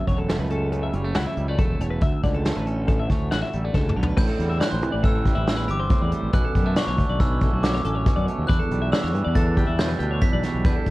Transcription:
Already playing: clean electric guitar F#2 A3 C#4
0.07 fingered electric bass E1, clean electric guitar F#3 C#5, kick, closed hi-hat
0.18 clean electric guitar A4
0.28 clean electric guitar A3, snare, closed hi-hat
0.39 fingered electric bass C#2, clean electric guitar B4
0.50 clean electric guitar C#4 A4, closed hi-hat
0.72 clean electric guitar C#3 A4, closed hi-hat
0.83 clean electric guitar E5
0.93 fingered electric bass F#1, clean electric guitar G3 C#5, closed hi-hat
1.04 clean electric guitar A3
1.14 fingered electric bass C#2, clean electric guitar E4 F#5, snare, closed hi-hat
1.27 clean electric guitar E5
1.37 fingered electric bass C#2, clean electric guitar G3, closed hi-hat
1.48 clean electric guitar A3 D5
1.58 fingered electric bass E1, clean electric guitar F#2 A4, kick, closed hi-hat
1.79 fingered electric bass E1, clean electric guitar E2 C#5, closed hi-hat
1.91 clean electric guitar B4
2.01 fingered electric bass D2, clean electric guitar D2 E5, kick, closed hi-hat
2.23 fingered electric bass C#2, clean electric guitar D3 D5, kick, closed hi-hat
2.34 clean electric guitar A4
2.45 clean electric guitar A3, snare, closed hi-hat
2.56 fingered electric bass A1, clean electric guitar B4
2.66 clean electric guitar C#4 A4, closed hi-hat
2.87 clean electric guitar A2 A4, kick, closed hi-hat
3.00 clean electric guitar E5
3.10 fingered electric bass D2, clean electric guitar A3 C#5, kick, snare, closed hi-hat
3.31 fingered electric bass A1, clean electric guitar F#4 F#5, snare, closed hi-hat
3.42 clean electric guitar E5
3.53 fingered electric bass A1, clean electric guitar G3, closed hi-hat
3.65 clean electric guitar A3 D5
3.74 fingered electric bass C#2, clean electric guitar D2 A4, kick, snare
3.89 mid tom
3.96 fingered electric bass B1, clean electric guitar D3 C#5
4.03 floor tom
4.07 clean electric guitar B4
4.17 fingered electric bass A1, clean electric guitar A2 A3 B4, glockenspiel G6, kick, crash
4.28 clean electric guitar C4 A4
4.39 fingered electric bass E2, clean electric guitar G3, closed hi-hat
4.50 clean electric guitar E5
4.60 clean electric guitar D5, glockenspiel F#6, snare, closed hi-hat
4.71 fingered electric bass A1, clean electric guitar C5
4.82 fingered electric bass C2, clean electric guitar E3, closed hi-hat
4.92 fingered electric bass A1, clean electric guitar D5
5.03 clean electric guitar C4 A4, glockenspiel E6, kick, closed hi-hat
5.25 clean electric guitar G3 G4, kick, closed hi-hat
5.35 fingered electric bass A1, clean electric guitar E4
5.47 clean electric guitar E2, glockenspiel E6, snare, closed hi-hat
5.57 clean electric guitar B4
5.68 fingered electric bass G1, clean electric guitar C4 G4, glockenspiel D6, closed hi-hat
5.80 clean electric guitar C5
5.90 clean electric guitar A2 C4, kick, closed hi-hat
6.01 fingered electric bass E2, clean electric guitar D5
6.12 clean electric guitar G3 C5, closed hi-hat
6.23 fingered electric bass A1
6.33 fingered electric bass B1, clean electric guitar B2 C#4 B4, glockenspiel F#6, kick, closed hi-hat
6.45 clean electric guitar A4
6.55 fingered electric bass F#2, clean electric guitar G3, kick, closed hi-hat
6.66 clean electric guitar A3 E5
6.76 clean electric guitar D5, glockenspiel C#6, snare, closed hi-hat
6.87 fingered electric bass B1, clean electric guitar C#5
6.97 fingered electric bass D2, clean electric guitar D3, kick, closed hi-hat
7.09 fingered electric bass B1, clean electric guitar D5
7.20 clean electric guitar C#4 B4, glockenspiel E6, kick, closed hi-hat
7.41 clean electric guitar A3 A4, kick, closed hi-hat
7.52 fingered electric bass B1, clean electric guitar F#4
7.63 clean electric guitar F#2, glockenspiel D6, snare, closed hi-hat
7.75 clean electric guitar C#5
7.85 fingered electric bass A1, clean electric guitar C#4 A4, closed hi-hat
7.95 clean electric guitar C#5
8.06 clean electric guitar B2 C#4, kick, closed hi-hat
8.16 fingered electric bass F#2, clean electric guitar D5
8.27 clean electric guitar A3 C#5, closed hi-hat
8.38 fingered electric bass D#2
8.47 fingered electric bass E2, clean electric guitar E2 D4 B4, glockenspiel F#6, kick, closed hi-hat
8.59 clean electric guitar A4
8.71 fingered electric bass B1, clean electric guitar G3, closed hi-hat
8.82 clean electric guitar E5
8.92 clean electric guitar D5, glockenspiel E6, snare, closed hi-hat
9.03 fingered electric bass E2, clean electric guitar C#5
9.14 fingered electric bass G2, clean electric guitar E3, closed hi-hat
9.24 fingered electric bass E2, clean electric guitar D5
9.35 clean electric guitar D4 A4, glockenspiel A6, kick, snare, closed hi-hat
9.57 clean electric guitar G3 G4, kick, closed hi-hat
9.67 fingered electric bass E2, clean electric guitar E4
9.79 clean electric guitar B2, glockenspiel G6, snare, closed hi-hat
9.88 clean electric guitar B4
9.99 fingered electric bass D2, clean electric guitar D4 G4, closed hi-hat
10.11 clean electric guitar C#5
10.21 clean electric guitar E2 D4, glockenspiel B6, kick, closed hi-hat
10.33 fingered electric bass B1, clean electric guitar D5
10.43 clean electric guitar G3 C#5, snare, closed hi-hat
10.54 fingered electric bass B1
10.64 fingered electric bass E2, clean electric guitar E2 D4 B4, glockenspiel G6, kick, closed hi-hat
10.76 clean electric guitar A4
10.86 fingered electric bass B1, kick, closed hi-hat

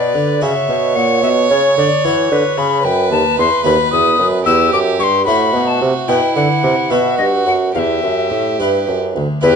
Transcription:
Already playing: harpsichord B2, bassoon B2, violin B4, recorder D5
0.14 harpsichord D3, bassoon D3
0.41 harpsichord C#3 F#4 C#5, bassoon C#3, violin C#5, recorder E5
0.68 harpsichord B2, bassoon B2
0.96 harpsichord A#2, bassoon A#2, recorder F#5
1.22 harpsichord B2, bassoon B2, recorder E5
1.50 harpsichord C#3, bassoon C#3, recorder C#5
1.77 harpsichord D3, bassoon D3, recorder D5
2.04 harpsichord E3 F#4 B4, bassoon E3, recorder C#5
2.31 harpsichord D3, bassoon D3, recorder B4
2.58 harpsichord C#3, bassoon C#3, recorder B5
2.84 harpsichord F#2, bassoon F#2, violin B4, recorder G5
3.10 harpsichord D#2, bassoon D#2, recorder A5
3.37 harpsichord E2, bassoon E2, recorder C6
3.63 harpsichord D#2 A3 F#4 B4, bassoon D#2, recorder B5
3.92 harpsichord E2, bassoon E2, recorder D#6
4.18 harpsichord F#2, bassoon F#2
4.45 harpsichord E2 G4 B4, bassoon E2, violin G4, recorder E6
4.73 harpsichord F#2, bassoon F#2, recorder D6
4.99 harpsichord G2, bassoon G2, recorder C#6
5.04 recorder C6
5.25 bassoon A2, harpsichord A2 A3 E4 C5, violin F#4, recorder B5
5.54 harpsichord B2, bassoon B2
5.67 recorder A5
5.82 bassoon C3, harpsichord C3
6.08 harpsichord B2 E4 B4, bassoon B2, violin E4, recorder G5
6.36 harpsichord D3, bassoon D3, recorder F#5
6.63 bassoon C3, harpsichord C3
6.90 harpsichord B2 F#4 B4, bassoon B2, violin F#4, recorder E5
7.18 harpsichord G2, bassoon G2, recorder D#5
7.46 harpsichord F#2, bassoon F#2, recorder F#5
7.75 bassoon E2, harpsichord E2, violin G4, recorder F5
7.79 recorder E5
8.03 bassoon F#2, harpsichord F#2
8.30 harpsichord A2, bassoon A2
8.59 bassoon G2, harpsichord G2 E4 B4
8.88 harpsichord F#2, bassoon F#2
9.15 bassoon D2, harpsichord D2
9.41 bassoon E2, harpsichord E2 E4 B4, violin G4, recorder B4

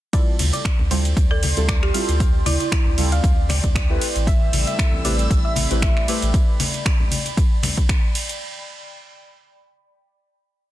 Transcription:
0.13 synth stab G3 C4 E4 F4 A4, synth pluck D5, ambient pad D5, kick, closed hi-hat, ride, cabasa
0.19 ambient pad G5
0.39 sub bass D2, open hi-hat, ride, high conga, cabasa
0.53 synth pluck D5, closed hi-hat, cabasa
0.65 finger snap, kick, closed hi-hat, cabasa
0.79 sub bass D2, low conga
0.84 ambient pad C6
0.91 synth stab G3 C4 E4 F4 A4, synth pluck C5, open hi-hat, ride, high conga, cabasa
1.05 closed hi-hat, cabasa
1.17 sub bass D2, kick, closed hi-hat, ride, cabasa
1.31 marimba A4, synth pluck D5
1.43 open hi-hat, ride, high conga, cabasa
1.57 sub bass D2, synth stab G3 C4 E4 F4 A4, closed hi-hat, cabasa
1.68 synth pluck D5, finger snap, kick, closed hi-hat, ride, cabasa
1.83 marimba G4, finger snap
1.94 synth stab G3 C4 E4 F4 A4, marimba G4, open hi-hat, ride, cabasa
2.08 sub bass D2, closed hi-hat, cabasa
2.20 kick, closed hi-hat, ride, cabasa
2.46 sub bass D2, marimba E4, synth pluck D5, open hi-hat, ride, high conga, cabasa
2.60 marimba E4, closed hi-hat, cabasa
2.72 finger snap, kick, closed hi-hat, cabasa
2.85 sub bass D2, low conga
2.98 synth stab G3 C4 E4 F4 A4, open hi-hat, ride, high conga, cabasa
3.12 synth pluck F5, closed hi-hat, cabasa
3.24 sub bass D2, kick, closed hi-hat, ride, cabasa
3.49 synth pluck D5, finger snap, open hi-hat, ride, high conga, low conga, cabasa
3.64 sub bass D2, kick, closed hi-hat, cabasa
3.75 finger snap, kick, closed hi-hat, ride, cabasa
3.89 synth stab A3 C4 E4 G4 B4
4.01 open hi-hat, ride, cabasa
4.16 sub bass A1, closed hi-hat, cabasa
4.22 ambient pad B5
4.27 analog synth pad G3 A3 C4 E4 A4, synth pluck E5, string machine E6, kick, closed hi-hat, ride, cabasa
4.53 sub bass A1, open hi-hat, ride, high conga, cabasa
4.67 synth pluck E5, closed hi-hat, cabasa
4.79 finger snap, kick, closed hi-hat, cabasa
4.92 sub bass A1, low conga
5.05 synth stab A3 C4 E4 G4 B4, synth pluck D5, open hi-hat, ride, high conga, cabasa
5.19 closed hi-hat, cabasa
5.30 sub bass A1, kick, closed hi-hat, ride, cabasa
5.45 synth pluck E5
5.56 open hi-hat, ride, high conga, cabasa
5.70 sub bass A1, synth stab A3 C4 E4 G4 B4, closed hi-hat, cabasa
5.82 synth pluck E5, finger snap, kick, closed hi-hat, cabasa
5.97 finger snap
6.08 synth stab A3 C4 E4 G4 B4, open hi-hat, ride, cabasa
6.22 sub bass A1, closed hi-hat, cabasa
6.34 kick, closed hi-hat, ride, cabasa
6.60 open hi-hat, ride, high conga, cabasa
6.74 closed hi-hat, cabasa
6.86 finger snap, kick, closed hi-hat, cabasa
7.00 low conga
7.11 open hi-hat, ride, high conga, cabasa
7.26 closed hi-hat, cabasa
7.37 kick, closed hi-hat, ride, cabasa
7.63 finger snap, open hi-hat, ride, high conga, low conga, cabasa
7.77 kick, closed hi-hat, cabasa
7.89 finger snap, kick, closed hi-hat, ride, cabasa
8.15 open hi-hat, ride, cabasa
8.29 closed hi-hat, cabasa

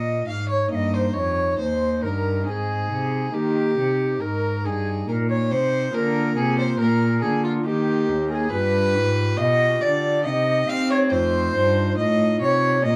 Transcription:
Already playing: pipe organ A#2, cello A#2, violin D#5, flute D#5
0.26 pipe organ G#2, cello G#2, flute F5, violin F5
0.49 violin C#5, flute C#5
0.66 pipe organ A#3 D#4
0.70 pipe organ G2, cello G2, violin D#5, flute F5
0.75 flute D#5
0.93 flute C5, violin C5
1.13 pipe organ F2, cello F2, violin C#5, flute D#5
1.19 flute C#5
1.58 pipe organ D#2, cello D#2, violin C5, flute C5
2.03 pipe organ G2, cello G2, flute A#4, violin A#4
2.40 pipe organ G#3 C4 D#4
2.46 pipe organ G#2, cello G#2, violin G#4, flute A#4
2.50 flute G#4
2.90 cello C3, pipe organ C3
3.29 pipe organ A#3 D#4
3.33 pipe organ D#3, cello D#3, violin G4, flute G4
3.77 pipe organ C3, cello C3
4.21 pipe organ G#2, cello G#2, violin A#4, flute A#4
4.65 pipe organ G2, cello G2, flute G#4, violin G#4
5.08 pipe organ A#2, cello A#2, flute A#4, violin A#4
5.30 flute C#5, violin C#5
5.51 pipe organ C3, cello C3, flute C5, violin C5
5.89 pipe organ A#3 F4 G#4
5.93 pipe organ D3, cello D3, flute A#4, violin A#4
6.36 pipe organ C3, cello C3, violin G#4, flute G#4
6.58 violin C5, flute D5
6.62 flute C5
6.79 pipe organ A#2, cello A#2, flute A#4, violin A#4
7.22 pipe organ D3, cello D3, violin G#4, flute G#4
7.44 violin F4, flute F4
7.61 pipe organ A#3 D#4 G4, violin G4
7.65 pipe organ D#3, cello D#3, flute G4
8.08 pipe organ D#2, cello D#2
8.30 violin G#4, flute A#4
8.34 flute G#4
8.49 pipe organ G2 F4 G4, cello G2, violin B4, flute B4
8.95 cello G#2, pipe organ G#2
9.38 cello B2, pipe organ B2, violin D#5, flute D#5 F5
9.82 pipe organ D3, cello D3, violin D5, flute D5
10.23 cello C3, pipe organ C3 D#4 G4, violin D#5, flute F5
10.28 flute D#5
10.68 cello C4, pipe organ C4, flute F5, violin F5
10.91 flute C#5, violin C#5
11.07 pipe organ A3 D#4 F4, violin C5
11.12 cello F2, pipe organ F2, flute C5
11.55 cello G2, pipe organ G2
11.98 cello A2, pipe organ A2, violin D#5, flute D#5
12.41 pipe organ C3, cello C3, violin C#5, flute C#5 D#5
12.80 pipe organ A#3 C#4 F4
12.84 pipe organ A#2, cello A#2, flute D#5, violin D#5

